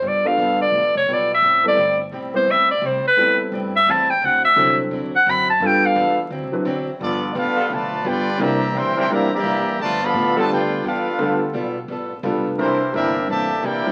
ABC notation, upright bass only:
X:1
M:4/4
L:1/8
Q:"Swing" 1/4=172
K:Gmix
V:1 name="Upright bass" clef=bass
G,,2 G,,,2 (3A,,, G,,, F,,, B,,,2 | A,,,2 G,,,2 B,,,2 A,,,2 | C,, z F,,2 G,,2 E,,2 | D,,2 C,,2 E,,2 ^F,,2 |
G,,2 E,,2 (3D,, C,, A,,, E,,2 | [K:G] G,,,2 A,,, z B,,,2 G,,,2 | C,,2 D,,2 E,,2 =F,,2 | G,,2 A,,2 D,,2 E,,2 |
D,,2 B,,,2 A,,,2 (3B,,, G,,, =F,,, | C,,2 G,,,2 A,,,2 _B,,,2 |]